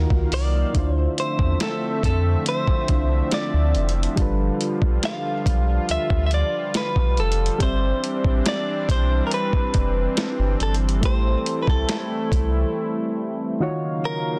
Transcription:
0.00 0.74 D#3 medium
0.00 0.74 F#3 medium
0.00 0.74 A#3 medium
0.00 0.74 D#4 medium
0.00 0.75 D#4 medium
0.00 0.75 F4 medium
0.00 0.75 F#4 medium
0.00 0.76 A#4 medium
0.00 0.74 F5 medium
0.10 0.27 C#2 medium
0.10 kick medium
0.32 0.65 C2 medium
0.32 0.97 D5 loud
0.32 open hi-hat medium
0.73 1.07 D2 loud
0.73 2.84 D3 medium
0.73 7.56 D3 medium
0.73 7.56 F3 medium
0.73 4.14 A3 medium
0.73 4.14 C4 medium
0.73 2.85 D4 medium
0.73 2.85 E4 medium
0.73 4.14 E5 medium
0.73 kick loud
0.73 closed hi-hat medium
0.77 2.86 F4 medium
0.77 2.87 C5 medium
0.97 1.19 C5 loud
1.18 1.59 C5 loud
1.18 closed hi-hat medium
1.39 1.55 E2 medium
1.39 kick medium
1.60 2.04 A4 medium
1.60 snare loud
1.60 closed hi-hat medium
2.03 2.36 F2 medium
2.03 2.44 A4 medium
2.03 kick loud
2.03 closed hi-hat medium
2.46 3.34 C5 medium
2.46 closed hi-hat medium
2.67 kick medium
2.88 3.22 C2 loud
2.88 4.17 D3 soft
2.88 4.16 D4 soft
2.88 4.18 E4 soft
2.88 4.17 F4 soft
2.88 4.19 C5 medium
2.88 kick medium
2.88 closed hi-hat medium
3.31 3.93 D5 medium
3.31 snare loud
3.31 closed hi-hat medium
3.54 3.77 D2 medium
3.75 4.07 F1 loud
3.75 closed hi-hat soft
3.89 closed hi-hat soft
4.03 closed hi-hat medium
4.16 4.50 G1 loud
4.16 7.55 G3 medium
4.16 13.56 G3 medium
4.16 7.56 D4 medium
4.16 7.57 F4 medium
4.16 kick loud
4.16 closed hi-hat medium
4.20 7.58 A4 medium
4.20 7.58 B4 medium
4.61 closed hi-hat medium
4.82 4.98 B1 medium
4.82 kick medium
5.03 5.86 F5 loud
5.03 snare loud
5.03 closed hi-hat medium
5.46 5.79 B1 loud
5.46 kick medium
5.46 closed hi-hat medium
5.89 5.98 D2 soft
5.89 6.25 E5 loud
5.89 closed hi-hat medium
6.10 6.43 D2 medium
6.10 kick medium
6.26 6.33 E5 medium
6.31 6.77 D5 loud
6.31 closed hi-hat medium
6.74 7.20 B4 medium
6.74 snare loud
6.74 closed hi-hat medium
6.96 7.19 B1 medium
6.96 kick medium
7.17 7.50 F1 loud
7.17 7.63 A4 medium
7.17 closed hi-hat soft
7.32 closed hi-hat soft
7.46 closed hi-hat medium
7.58 7.93 G1 loud
7.58 13.56 E3 medium
7.58 10.98 G3 medium
7.58 13.56 C4 medium
7.58 11.00 C4 medium
7.58 11.00 D4 medium
7.58 10.99 G4 medium
7.58 kick loud
7.58 closed hi-hat medium
7.63 8.48 C5 loud
7.63 11.01 D5 medium
7.63 11.01 E5 medium
8.04 closed hi-hat medium
8.24 8.41 A1 medium
8.24 kick medium
8.46 8.91 D5 loud
8.46 snare loud
8.46 closed hi-hat medium
8.89 9.21 B1 medium
8.89 9.26 C5 medium
8.89 kick medium
8.89 closed hi-hat medium
9.27 9.33 A#4 medium
9.31 10.57 B4 medium
9.31 closed hi-hat medium
9.53 kick medium
9.74 10.07 F1 loud
9.74 kick medium
9.74 closed hi-hat medium
10.17 snare loud
10.17 closed hi-hat medium
10.39 10.55 G1 medium
10.60 11.05 G1 loud
10.60 10.74 A4 medium
10.60 closed hi-hat soft
10.74 closed hi-hat soft
10.89 closed hi-hat medium
11.01 11.36 A1 loud
11.01 13.55 A3 medium
11.01 13.58 A3 medium
11.01 13.56 E4 medium
11.01 13.58 E4 medium
11.01 13.57 G4 medium
11.01 kick loud
11.01 closed hi-hat medium
11.05 13.57 A4 medium
11.05 11.62 C5 loud
11.05 13.58 C5 medium
11.46 closed hi-hat medium
11.62 11.68 B4 medium
11.67 11.84 C2 medium
11.67 13.57 A4 medium
11.67 kick medium
11.89 snare loud
11.89 closed hi-hat medium
12.32 12.64 C2 loud
12.32 kick medium
12.32 closed hi-hat medium
13.60 14.39 C#3 medium
13.60 14.39 D#3 medium
13.60 14.39 F#3 medium
13.60 14.39 A#3 medium
13.60 14.39 D#4 medium
13.60 14.39 F4 medium
13.60 14.39 F#4 medium
13.60 14.39 C#5 medium
13.60 14.39 F5 medium
14.05 14.39 A#4 medium

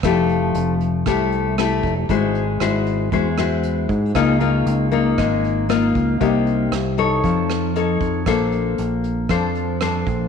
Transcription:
0.03 0.51 F1 medium
0.03 1.04 F3 medium
0.03 0.73 A3 medium
0.03 0.74 E4 medium
0.03 0.74 G4 medium
0.03 kick medium
0.03 cross-stick medium
0.03 closed hi-hat soft
0.29 closed hi-hat soft
0.55 1.03 F1 medium
0.55 closed hi-hat soft
0.80 closed hi-hat soft
1.06 1.80 C2 loud
1.06 2.07 C3 soft
1.06 1.54 A3 medium
1.06 1.54 E4 medium
1.06 1.55 G4 soft
1.06 kick medium
1.06 cross-stick medium
1.06 closed hi-hat soft
1.32 closed hi-hat soft
1.58 1.93 A3 medium
1.58 1.93 E4 medium
1.58 1.93 G4 medium
1.58 cross-stick medium
1.58 closed hi-hat soft
1.83 2.08 F1 medium
1.83 kick medium
1.83 closed hi-hat soft
2.09 2.57 G#1 loud
2.09 3.10 G#3 medium
2.09 2.43 E4 medium
2.09 2.43 F#4 medium
2.09 2.43 C5 medium
2.09 kick medium
2.09 closed hi-hat soft
2.35 closed hi-hat soft
2.60 3.09 G#1 medium
2.60 3.08 E4 medium
2.60 3.09 F#4 medium
2.60 3.09 C5 medium
2.60 cross-stick medium
2.60 closed hi-hat soft
2.86 closed hi-hat soft
3.12 3.85 E2 medium
3.12 4.13 G#3 medium
3.12 3.28 E4 soft
3.12 3.28 F#4 soft
3.12 3.28 C5 medium
3.12 kick medium
3.12 closed hi-hat soft
3.38 4.11 E4 medium
3.38 4.11 F#4 medium
3.38 4.12 C5 medium
3.38 cross-stick medium
3.38 closed hi-hat soft
3.63 closed hi-hat soft
3.89 4.13 G#2 loud
3.89 kick medium
3.89 closed hi-hat soft
4.15 4.63 C#2 medium
4.15 5.15 C#3 medium
4.15 4.37 A#3 medium
4.15 4.37 D#4 medium
4.15 4.37 F4 medium
4.15 kick medium
4.15 cross-stick medium
4.15 closed hi-hat soft
4.40 4.88 A#3 medium
4.40 4.88 D#4 medium
4.40 4.88 F4 medium
4.40 closed hi-hat soft
4.66 5.14 C#2 medium
4.66 closed hi-hat medium
4.91 5.65 A#3 medium
4.91 5.65 D#4 medium
4.91 5.66 F4 medium
4.91 closed hi-hat soft
5.18 5.91 G#1 medium
5.18 6.18 G#3 medium
5.18 kick medium
5.18 cross-stick medium
5.18 closed hi-hat soft
5.44 closed hi-hat soft
5.69 6.17 A#3 medium
5.69 6.17 D#4 soft
5.69 6.17 F4 medium
5.69 cross-stick medium
5.69 closed hi-hat soft
5.95 6.19 C#2 medium
5.95 kick medium
5.95 closed hi-hat soft
6.20 6.69 C2 medium
6.20 7.21 C3 medium
6.20 6.72 A#3 medium
6.20 6.72 D#4 medium
6.20 6.72 G4 medium
6.20 kick medium
6.20 closed hi-hat soft
6.47 closed hi-hat soft
6.72 7.20 C2 medium
6.72 cross-stick medium
6.72 closed hi-hat soft
6.98 7.71 D#4 medium
6.98 7.71 A4 medium
6.98 7.72 C#5 medium
6.98 closed hi-hat soft
7.24 7.97 F2 medium
7.24 8.24 F3 soft
7.24 kick medium
7.24 closed hi-hat soft
7.50 cross-stick medium
7.50 closed hi-hat soft
7.75 8.25 D#4 soft
7.75 8.25 A4 soft
7.75 8.25 C#5 medium
7.75 closed hi-hat soft
8.01 8.25 F2 medium
8.01 kick medium
8.01 closed hi-hat soft
8.26 8.74 A#1 medium
8.26 9.27 A#3 medium
8.26 9.26 D4 medium
8.26 9.26 A4 medium
8.26 9.26 C5 medium
8.26 kick medium
8.26 cross-stick medium
8.26 closed hi-hat soft
8.52 closed hi-hat soft
8.78 9.26 A#1 medium
8.78 closed hi-hat soft
9.04 closed hi-hat soft
9.29 10.03 F2 medium
9.29 10.28 F3 soft
9.29 9.77 D4 medium
9.29 9.77 A4 medium
9.29 9.77 C5 medium
9.29 kick medium
9.29 cross-stick medium
9.29 closed hi-hat soft
9.55 closed hi-hat soft
9.81 10.28 D4 medium
9.81 10.28 A4 soft
9.81 10.28 C5 medium
9.81 cross-stick medium
9.81 closed hi-hat soft
10.07 10.28 A#1 loud
10.07 kick medium
10.07 closed hi-hat soft

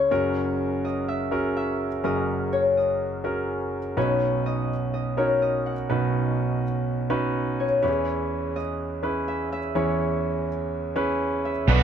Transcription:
0.00 0.12 C#2 medium
0.00 0.13 C#3 medium
0.00 0.11 C#4 medium
0.00 0.13 E4 medium
0.00 0.11 G#4 medium
0.00 1.04 A#4 medium
0.00 0.12 C#5 medium
0.00 1.79 C#5 medium
0.11 2.00 F#1 medium
0.11 2.00 F#2 medium
0.11 0.84 C#4 medium
0.11 0.84 F#4 medium
0.11 0.84 G#4 medium
0.11 0.84 A#4 medium
0.85 1.14 D#5 medium
1.08 1.56 E5 medium
1.31 1.86 C#4 medium
1.31 1.86 F#4 medium
1.31 1.86 G#4 medium
1.31 1.86 A#4 medium
1.57 2.11 E5 medium
2.04 3.93 F#1 medium
2.04 3.93 F#2 medium
2.04 2.77 C#4 medium
2.04 2.77 F#4 medium
2.04 2.77 G#4 medium
2.04 2.77 A#4 medium
2.04 2.77 D#5 medium
2.53 3.98 C#5 medium
2.77 4.46 D#5 medium
3.24 3.79 C#4 medium
3.24 3.79 F#4 medium
3.24 3.79 G#4 soft
3.24 3.79 A#4 medium
3.97 5.86 B1 medium
3.97 5.86 B2 medium
3.97 4.70 C#4 medium
3.97 4.70 D#4 medium
3.97 4.70 F#4 medium
3.97 4.70 B4 medium
3.97 5.18 C#5 medium
4.46 4.93 D#5 medium
4.94 5.42 D#5 medium
5.17 5.72 C#4 medium
5.17 5.72 D#4 soft
5.17 5.72 F#4 medium
5.17 5.72 A#4 medium
5.17 7.09 C#5 medium
5.42 7.20 D#5 medium
5.66 7.27 F#5 medium
5.90 7.79 B1 medium
5.90 7.79 B2 medium
5.90 6.63 C#4 medium
5.90 6.63 D#4 medium
5.90 6.63 F#4 medium
5.90 6.63 B4 medium
7.10 7.65 C#4 medium
7.10 7.65 D#4 medium
7.10 7.65 F#4 medium
7.10 7.65 B4 medium
7.60 9.51 C#5 medium
7.82 9.72 E2 medium
7.82 9.72 E3 medium
7.82 8.56 C#4 medium
7.82 8.56 E4 medium
7.82 7.89 G4 soft
7.82 8.56 B4 medium
7.89 8.59 G#4 medium
8.56 9.34 D#5 medium
9.03 9.58 C#4 medium
9.03 9.58 E4 medium
9.03 9.58 G#4 medium
9.03 9.58 B4 medium
9.28 9.52 E5 medium
9.52 11.25 E5 medium
9.75 11.64 E2 medium
9.75 11.64 E3 medium
9.75 10.48 C#4 medium
9.75 10.48 E4 medium
9.75 10.49 G#4 medium
9.75 10.49 C#5 medium
10.96 11.51 C#4 medium
10.96 11.51 E4 medium
10.96 11.51 G#4 medium
10.96 11.51 B4 medium
11.45 11.83 E5 medium
11.68 11.83 B1 medium
11.68 11.83 B2 medium
11.68 11.83 D3 medium
11.68 11.83 F#3 medium
11.68 11.83 B3 medium
11.68 11.83 D4 medium
11.68 11.83 F#4 medium
11.68 11.83 B4 medium
11.68 11.83 F#5 medium

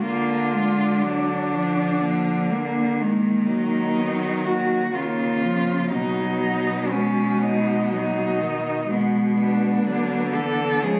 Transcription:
0.04 3.03 D3 soft
0.04 0.54 A#3 soft
0.04 2.02 D4 soft
0.04 1.05 F4 medium
0.53 1.05 G#3 soft
1.03 1.54 F#3 soft
1.03 3.01 D4 soft
1.53 2.01 F3 soft
2.01 2.54 F3 soft
2.01 3.01 A#3 soft
2.52 3.03 A#3 soft
3.01 4.93 D#3 soft
3.01 3.50 G#3 soft
3.01 3.98 A#3 soft
3.48 4.93 F#3 soft
3.48 4.47 D#4 medium
3.97 4.46 B3 soft
4.45 4.93 A#3 soft
4.45 4.96 F#4 medium
4.93 5.94 C#3 soft
4.93 5.44 D#3 soft
4.93 5.95 A#3 soft
4.93 5.92 F4 medium
5.42 5.92 F3 soft
5.92 8.89 B2 soft
5.92 6.93 F#3 soft
5.92 6.93 B3 soft
5.92 6.94 D#4 medium
6.92 7.93 G#3 soft
6.92 8.90 B3 medium
6.92 7.43 C#4 soft
7.42 7.91 D#4 soft
7.91 8.43 F#3 soft
7.91 8.92 D#4 soft
8.41 8.90 D#3 soft
8.90 9.83 B2 soft
8.90 9.87 G#3 soft
8.90 10.83 B3 soft
9.37 10.36 D4 medium
9.85 10.84 D3 soft
9.85 10.35 F#3 soft
10.33 10.83 E3 soft
10.33 10.84 A4 medium
10.82 11.00 C#3 soft
10.82 11.00 F3 soft
10.82 11.00 G#3 soft
10.82 11.00 G#4 medium

